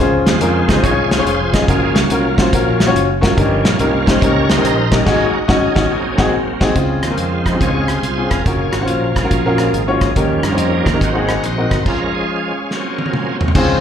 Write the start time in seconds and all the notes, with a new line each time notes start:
0.00 C#2 C#3 C#4 F4 G#4 C5
0.26 D#2 G#3 C4 F4, snare, closed hi-hat
0.41 F2 C#4 F4 G#4 A#4, closed hi-hat
0.68 C#2 D#3 F3 C4 C#4 F4 G#4 C5, kick, snare, closed hi-hat
0.83 C#4 F4 G#4 C#5, kick, closed hi-hat
1.11 F4 G#4 C5, snare, closed hi-hat
1.18 C#4 F4 G#4 C#5
1.25 F1, closed hi-hat
1.53 C#4 F4 G#4 A#4 D#5, kick, snare, closed hi-hat
1.68 F#1 F3 G#3 A#3 C#4 F4 F#4 G#4 A#4, kick, closed hi-hat
1.95 C#2 F#4, snare, closed hi-hat
2.10 C2 A#3 C#4 F4 F#4 A#4, closed hi-hat
2.38 C#4 F4 F#4 C5, kick, snare, closed hi-hat
2.53 A#1 C#4 F4 F#4 A#4, kick, closed hi-hat
2.80 snare, closed hi-hat
2.87 C#4 F4 F#4 C#5
2.95 F#1, closed hi-hat
3.21 C#4 F4 F#4 A#4, kick, snare, closed hi-hat
3.37 G1 G2 F3 G3 C#4 D#4 G4 A#4, kick, closed hi-hat
3.65 A#1 A#3 C#4 F4, snare, closed hi-hat
3.79 C2 C#4 D#4 G4 A#4, closed hi-hat
4.07 C#4 D#4 G4 C5, kick, snare, closed hi-hat
4.22 C#2 C#4 D#4 G4 A#4 C#5, kick, closed hi-hat
4.49 D#4 C5, snare, closed hi-hat
4.58 C#4 D#4 G4 A#4
4.64 A#1, closed hi-hat
4.90 C#4 D#4 G4 A#4, kick, snare, closed hi-hat
5.05 G#1 G#2 F#3 A#3 C#4 D#4 F#4 G#4, kick, snare, crash
5.33 F#4
5.48 G#1 C#4 D#4 F#4 G#4, kick, snare
5.75 G#1 C#4 D#4 F#4, kick, snare
5.90 F#3 A#3 C4
6.18 G#1 C4 D#4 F#4 G#4, kick, snare
6.60 G#1 C4 D#4 F#4 G#4, kick, snare, crash
6.75 C#2 C#3 C4 C#4 F4 G#4, kick, closed hi-hat
7.03 D#2 G#3 C4 F4, cross-stick, closed hi-hat
7.10 C4 C#4 F4 A#4
7.18 F2, closed hi-hat
7.46 D#3 F3 C4 C5, kick, cross-stick, closed hi-hat
7.53 C4 C#4 F4 G#4
7.61 C#2 F4 G#4 C#5, kick, closed hi-hat
7.74 C4 C#4 F4 G#4
7.87 F4 G#4 C5, cross-stick, closed hi-hat
8.03 C2, closed hi-hat
8.18 C4 C#4 F4 G#4
8.30 F1 A#4, kick, cross-stick, closed hi-hat
8.46 F#1 C#4 F4 F#4 G#4 A#4, kick, closed hi-hat
8.72 G#1 F#4, cross-stick, closed hi-hat
8.81 C#4 F4 F#4 C5
8.87 A#1 A#3 C#4 F4, closed hi-hat
9.16 C2 F3 G#3 A#3, kick, cross-stick, closed hi-hat
9.24 C#4 F4 F#4 A#4
9.31 A#1, kick, closed hi-hat
9.46 C#4 F4 F#4 A#4
9.58 cross-stick, closed hi-hat
9.73 G#1, closed hi-hat
9.88 C#4 F4 F#4 C#5
10.01 kick, cross-stick, closed hi-hat
10.16 D#2 D#3 F3 G3 C#4 D#4 G4 A#4, kick, closed hi-hat
10.43 G2 G3 A#3 D#4, cross-stick, closed hi-hat
10.51 C#4 D#4 G4 C5
10.58 F2, closed hi-hat
10.86 D#2 A#4, kick, cross-stick, closed hi-hat
10.94 C#4 D#4 G4 A#4
11.01 G#1 G#2 F#3 A#3 C4 D#4 F#4 C5, kick, closed hi-hat
11.15 C4 D#4 F#4 G#4
11.29 A#4, cross-stick, closed hi-hat
11.43 A#1 D#4 F#4 C5, closed hi-hat
11.58 C4 D#4 F#4 A#4
11.71 G1, kick, cross-stick, closed hi-hat
11.86 F3 G#3 C#4 F4 A#4, kick, crash
12.15 C#4 F4 G#4
12.71 F#3 A#3 C4, snare
12.98 high tom
13.06 high tom
13.13 mid tom
13.41 floor tom
13.48 floor tom
13.55 C#2 C#3 D#3 F3 C4 C#4 F4 G#4 C5, kick, crash